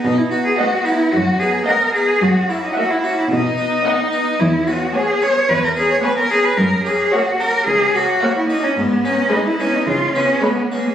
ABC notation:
X:1
M:4/4
L:1/16
Q:1/4=110
K:B
V:1 name="Violin section"
z4 f4 z4 f4 | z4 f4 z4 f4 | [K:C#dor] z4 g4 z4 g4 | z4 f4 z4 f4 |
z4 d4 z4 c4 |]
V:2 name="Violin section"
z4 d4 z4 d4 | z4 e4 z4 d4 | [K:C#dor] z4 c4 z4 c4 | z4 c4 z4 c4 |
z4 B4 z4 B4 |]
V:3 name="Cello"
D E F G F2 E2 F2 G2 A2 G2 | F2 E D F E F E D8 | [K:C#dor] E2 F2 G2 c2 B A G c B A G B | A2 G2 F2 A2 G2 F3 E D C |
B,2 C2 D E C D ^E2 C2 B,2 A, G, |]
V:4 name="Harpsichord"
z2 [B,D]4 [B,D]2 z2 [B,D]4 [B,D]2 | z2 [A,CE]4 [A,CE]2 z2 [B,D]4 [B,D]2 | [K:C#dor] z2 [B,CG]4 [B,CG]2 z2 [B,CG]4 [B,CG]2 | z2 [A,CF]4 [A,CF]2 z2 [A,CF]4 [A,CF]2 |
z2 [G,B,D]4 [G,B,D]2 z2 [G,B,C]4 [G,B,C]2 |]
V:5 name="Harpsichord" clef=bass
B,,4 z4 F,,4 z4 | F,,4 z4 B,,4 z4 | [K:C#dor] E,,4 z4 E,,4 z4 | F,,4 z4 C,,4 z4 |
G,,4 z4 C,4 z4 |]
V:6 name="Viola section"
z4 B,4 z4 B,4 | z4 A,4 z4 B,4 | [K:C#dor] z4 B,4 z4 B,4 | z4 A,4 z4 A,4 |
z4 G,4 z4 G,4 |]
V:7 name="Cello section" clef=bass
B,,4 z4 F,,4 z4 | F,,4 z4 B,,4 z4 | [K:C#dor] E,,4 z4 E,,4 z4 | F,,4 z4 C,,4 z4 |
G,,4 z4 C,4 z4 |]